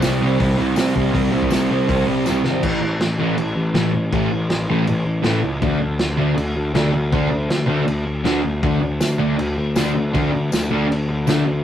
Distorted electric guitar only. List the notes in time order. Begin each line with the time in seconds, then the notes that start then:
0.03 C3 G3 C4
0.21 C3 G3 C4
0.39 C3 G3 C4
0.58 C3 G3 C4
0.75 C3 G3 C4
0.94 C3 G3 C4
1.12 C3 G3 C4
1.31 C3 G3 C4
1.49 C3 G3 C4
1.69 C3 G3 C4
1.88 C3 G3 C4
2.06 C3 G3 C4
2.27 C3 G3 C4
2.45 C3 G3 C4
2.64 A2 E3 A3
3.19 A2 E3 A3
3.74 A2 E3 A3
4.12 A2 E3 A3
4.69 A2 E3 A3
5.23 A2 E3 A3
5.62 D3 A3 D4
6.17 D3 A3 D4
6.74 D3 A3 D4
7.12 D3 A3 D4
7.66 D3 A3 D4
8.24 D3 A3 D4
8.63 D3 A3 D4
9.18 D3 A3 D4
9.76 D3 A3 D4
10.13 D3 A3 D4
10.71 D3 A3 D4
11.27 D3 A3 D4